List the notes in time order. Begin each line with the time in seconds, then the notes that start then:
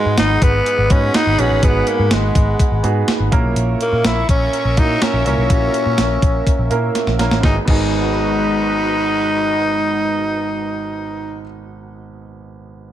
Already playing: G#2 G#3 B3 D#4 F#4 G#4 F#5 B5
0.06 G#2
0.18 G#1 D#4, snare, closed hi-hat
0.42 G#1 B3, kick, closed hi-hat
0.66 closed hi-hat
0.78 G#1
0.90 G#2 B3 C#4 D#4 F#4 B4, kick, closed hi-hat
1.14 D#4, snare, closed hi-hat
1.27 G#1
1.38 A#1 B3 C#4 D#4 F#4 G#4, closed hi-hat
1.51 A1
1.62 G#1 G#2 B3 D#4 F#4 G#4, kick, closed hi-hat
1.87 A#3, closed hi-hat
1.99 G#2
2.11 G#1 G#3, snare, closed hi-hat
2.35 G#1, kick, closed hi-hat
2.60 kick, closed hi-hat
2.72 G#1
2.83 G#2 B3 D#4 F#4 G#4, closed hi-hat
3.08 snare, closed hi-hat
3.20 G#1
3.32 A#1 A#2 A#3 C#4 E4 A#4 E5 C#6, kick, closed hi-hat
3.44 B1
3.56 A#1, closed hi-hat
3.81 A#3, closed hi-hat
3.93 A#2
4.05 A#1 E4, snare, closed hi-hat
4.29 A#1 C#4, kick, closed hi-hat
4.53 closed hi-hat
4.65 A#1
4.77 A#2 A#3 C#4 D#4 E4 F#4, kick, closed hi-hat
5.02 C#4, snare, closed hi-hat
5.14 A#1
5.25 C2 A#2 A#3 C#4 E4 A#4, closed hi-hat
5.38 B1
5.49 A#1 A#3 C#4 E4 F#4, kick, closed hi-hat
5.74 closed hi-hat
5.86 A#2
5.98 A#1, snare, closed hi-hat
6.22 A#1, kick, closed hi-hat
6.47 kick, closed hi-hat
6.59 A#1
6.70 A#2 A#3 C#4 E4 A#4, closed hi-hat
6.95 snare, closed hi-hat
7.07 A#1, snare
7.19 A#1 A#3 C#4 E4 A#4, snare, closed hi-hat
7.31 A1, snare
7.41 G#1 G#3 B3 D#4 F#4 B4, kick, snare
7.46 G#4
7.65 G#1 B3 D#4 F#4, kick, crash
7.70 G#4